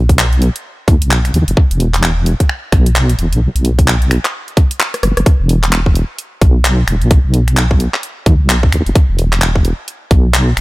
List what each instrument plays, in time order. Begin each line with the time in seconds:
Already playing: wobble bass B1
0.09 kick, closed hi-hat
0.19 clap
0.33 closed hi-hat
0.42 open hi-hat
0.56 closed hi-hat
0.88 wobble bass D#2, kick, open hi-hat
1.02 wobble bass B1, closed hi-hat
1.11 clap
1.25 finger snap, closed hi-hat
1.34 wobble bass D#2, open hi-hat
1.48 wobble bass F#1, closed hi-hat
1.57 kick
1.71 wobble bass E1, closed hi-hat
1.80 open hi-hat
1.94 clap, closed hi-hat
2.03 clap
2.26 open hi-hat
2.40 kick, closed hi-hat
2.49 finger snap
2.72 wobble bass B1, finger snap, kick, open hi-hat
2.86 closed hi-hat
2.96 clap
3.09 closed hi-hat
3.19 wobble bass E1, open hi-hat
3.32 wobble bass B1, closed hi-hat
3.56 wobble bass B1, closed hi-hat
3.65 open hi-hat
3.79 kick, closed hi-hat
3.88 clap
4.02 closed hi-hat
4.11 finger snap, open hi-hat
4.25 clap, closed hi-hat
4.48 closed hi-hat
4.57 kick, open hi-hat
4.71 closed hi-hat
4.80 clap
4.94 cross-stick, closed hi-hat
5.03 wobble bass F#1, cross-stick, open hi-hat
5.17 wobble bass F#1, cross-stick, closed hi-hat
5.26 kick, closed hi-hat
5.40 wobble bass E1
5.49 open hi-hat
5.63 finger snap, clap, closed hi-hat
5.72 clap, closed hi-hat
5.86 kick
5.95 open hi-hat
6.18 closed hi-hat
6.42 wobble bass B1, kick, open hi-hat
6.65 clap, closed hi-hat
6.88 wobble bass E1, finger snap, open hi-hat
7.01 wobble bass B1, closed hi-hat
7.11 kick, closed hi-hat
7.25 wobble bass B1
7.34 open hi-hat
7.48 finger snap, closed hi-hat
7.57 clap, closed hi-hat
7.71 kick
7.80 open hi-hat
7.94 clap
8.03 closed hi-hat
8.26 wobble bass D#2, kick, open hi-hat
8.40 wobble bass B1
8.49 clap, closed hi-hat
8.63 kick
8.72 wobble bass D#2, finger snap, open hi-hat
8.86 wobble bass F#1, closed hi-hat
8.95 kick, closed hi-hat
9.09 wobble bass E1
9.19 open hi-hat
9.33 finger snap, clap, closed hi-hat
9.42 clap, closed hi-hat
9.56 kick
9.65 open hi-hat
9.88 closed hi-hat
10.11 wobble bass B1, kick, open hi-hat
10.34 clap, closed hi-hat
10.57 wobble bass E1, finger snap, open hi-hat